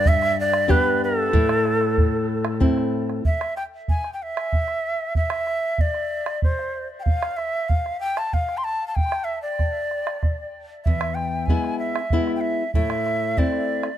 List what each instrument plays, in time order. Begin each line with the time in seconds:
Already playing: nylon-string guitar G2
0.06 quena E5, bombo low
0.22 bombo rim
0.40 quena D5
0.53 bombo rim
0.68 nylon-string guitar B3 D4 G4, quena B4, bombo low
1.04 quena A4
1.33 nylon-string guitar A2, bombo low
1.49 bombo rim
1.65 bombo rim
1.81 bombo rim
1.98 bombo low
2.45 bombo rim
2.60 nylon-string guitar A3 C4 E4, bombo low
2.77 bombo rim
3.10 bombo rim
3.25 quena E5, bombo low
3.41 bombo rim
3.57 quena G5, bombo rim
3.88 quena G#5, bombo low
4.04 bombo rim
4.13 quena G5
4.23 quena E5
4.37 bombo rim
4.53 bombo low
4.68 bombo rim
5.15 quena E5, bombo low
5.30 bombo rim
5.47 bombo rim
5.78 quena D5, bombo low
5.94 bombo rim
6.26 bombo rim
6.42 quena C5, bombo low
6.59 bombo rim
7.00 quena F5 G5
7.06 bombo low
7.22 bombo rim
7.37 quena E5, bombo rim
7.69 quena F5, bombo low
7.86 bombo rim
8.00 quena G5
8.17 quena A5, bombo rim
8.33 quena F5, bombo low
8.49 bombo rim
8.57 quena C6
8.64 quena A5
8.88 quena A5
8.95 quena G5, bombo low
9.12 bombo rim
9.24 quena E5
9.42 quena D5
9.59 bombo rim, bombo low
9.91 bombo rim
10.07 bombo rim
10.23 bombo rim, bombo low
10.84 nylon-string guitar E2, quena E5, bombo low
11.01 bombo rim
11.15 quena G5, bombo rim
11.46 nylon-string guitar G#3 B3, quena G#5, bombo low
11.50 nylon-string guitar E4
11.64 bombo rim
11.79 quena E5
11.96 bombo rim
12.10 nylon-string guitar G#3 B3 E4, bombo low
12.27 bombo rim
12.36 quena G5
12.41 quena E5
12.74 nylon-string guitar A2, quena E5, bombo low
12.90 bombo rim
13.06 bombo rim
13.37 nylon-string guitar A3 C4 E4, quena D5, bombo low
13.52 bombo rim
13.83 bombo rim